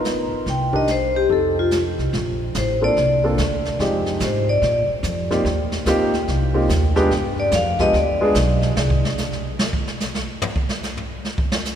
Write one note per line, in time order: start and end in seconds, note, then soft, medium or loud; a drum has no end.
0.00 0.28 G1 medium
0.00 0.44 B3 medium
0.00 0.44 D#4 soft
0.00 0.44 F4 soft
0.00 0.44 A#4 medium
0.04 snare medium
0.04 hi-hat pedal soft
0.32 muted upright bass stroke soft
0.46 1.26 C2 medium
0.46 0.75 G5 medium
0.46 brush sweep soft
0.46 kick soft
0.46 snare soft
0.73 0.87 D4 medium
0.73 0.87 D#4 soft
0.73 0.87 G4 medium
0.73 0.87 A#4 medium
0.73 0.89 D#5 medium
0.73 kick soft
0.87 1.16 C5 medium
0.87 snare medium
0.87 hi-hat pedal soft
1.16 1.30 G4 medium
1.29 1.94 F2 medium
1.29 1.54 C4 medium
1.29 1.54 D#4 soft
1.29 1.54 G4 soft
1.29 1.54 A4 medium
1.29 1.58 A4 medium
1.29 brush sweep soft
1.29 kick soft
1.59 1.67 F4 medium
1.71 snare soft
1.71 hi-hat pedal medium
1.98 2.12 C2 medium
1.98 snare soft
2.13 2.53 A#1 medium
2.13 brush sweep soft
2.13 kick soft
2.13 snare soft
2.54 2.95 A1 medium
2.54 2.83 C5 medium
2.54 kick soft
2.54 snare medium
2.54 hi-hat pedal medium
2.81 2.95 A#3 medium
2.81 2.95 C4 soft
2.81 2.95 D4 soft
2.81 2.95 F4 medium
2.81 2.95 A4 medium
2.81 3.22 D5 medium
2.96 3.37 C2 medium
2.96 brush sweep soft
2.96 kick soft
2.96 snare soft
3.24 3.37 A#3 medium
3.24 3.37 C4 medium
3.24 3.37 D4 medium
3.24 3.37 F4 medium
3.24 3.37 A4 medium
3.38 3.78 D2 medium
3.38 kick soft
3.38 snare medium
3.38 hi-hat pedal soft
3.65 snare soft
3.79 4.19 F2 medium
3.79 4.42 G#3 medium
3.79 4.42 C4 soft
3.79 4.42 D#4 soft
3.79 4.43 F4 soft
3.79 4.43 G4 medium
3.79 brush sweep soft
3.79 kick soft
3.79 snare soft
4.06 snare soft
4.20 4.61 G#2 medium
4.20 kick soft
4.20 snare medium
4.20 hi-hat pedal medium
4.25 4.49 C5 medium
4.49 4.87 D5 medium
4.62 4.87 A#2 medium
4.62 brush sweep soft
4.62 kick soft
4.62 snare soft
4.89 muted upright bass stroke soft
5.03 5.44 F2 medium
5.03 kick soft
5.03 snare medium
5.03 hi-hat pedal medium
5.31 5.44 A#3 medium
5.31 5.44 C4 medium
5.31 5.44 D#4 medium
5.31 5.44 F4 medium
5.31 5.44 G4 medium
5.31 snare soft
5.45 5.85 D#2 medium
5.45 brush sweep soft
5.45 kick soft
5.45 snare soft
5.72 snare medium
5.86 6.26 D2 medium
5.86 6.11 A#3 medium
5.86 6.11 C4 medium
5.86 6.11 D#4 medium
5.86 6.11 F4 medium
5.86 6.12 G4 medium
5.86 kick soft
5.86 snare medium
5.86 hi-hat pedal medium
6.14 snare soft
6.28 6.68 C2 medium
6.28 brush sweep soft
6.28 kick soft
6.28 snare soft
6.54 6.68 A#3 medium
6.54 6.68 C4 medium
6.54 6.68 D#4 medium
6.54 6.68 F4 medium
6.54 6.68 G4 medium
6.69 7.10 D#2 medium
6.69 kick soft
6.69 snare medium
6.69 hi-hat pedal medium
6.96 7.09 G#3 medium
6.96 7.09 B3 medium
6.96 7.09 D4 medium
6.96 7.09 F4 medium
6.96 7.09 G4 medium
6.96 snare soft
7.11 7.51 G2 medium
7.11 brush sweep soft
7.11 kick soft
7.11 snare soft
7.40 7.53 D5 medium
7.51 7.92 F2 medium
7.51 7.80 F5 medium
7.51 kick soft
7.51 snare medium
7.51 hi-hat pedal medium
7.79 7.92 G#3 medium
7.79 7.93 B3 medium
7.79 7.93 D4 medium
7.79 7.93 F4 medium
7.79 7.93 G4 medium
7.79 7.94 D#5 medium
7.79 kick soft
7.79 snare soft
7.93 8.34 D2 medium
7.93 8.67 D5 medium
7.93 brush sweep soft
7.93 kick soft
7.93 snare soft
8.21 8.34 G#3 medium
8.21 8.34 B3 medium
8.21 8.34 D4 medium
8.21 8.34 F4 medium
8.21 8.34 G#4 medium
8.35 8.75 B1 medium
8.35 kick soft
8.35 snare medium
8.35 hi-hat pedal medium
8.62 snare soft
8.76 9.02 C2 medium
8.76 snare loud
8.90 kick medium
9.05 snare soft
9.18 snare soft
9.18 hi-hat pedal medium
9.32 snare soft
9.59 snare medium
9.73 kick medium
9.87 snare soft
10.00 snare medium
10.00 hi-hat pedal medium
10.15 snare soft
10.42 floor tom loud
10.56 kick medium
10.69 snare soft
10.83 snare soft
10.83 hi-hat pedal medium
10.97 floor tom soft
11.25 snare soft
11.38 kick medium
11.52 snare medium
11.65 snare soft
11.65 hi-hat pedal medium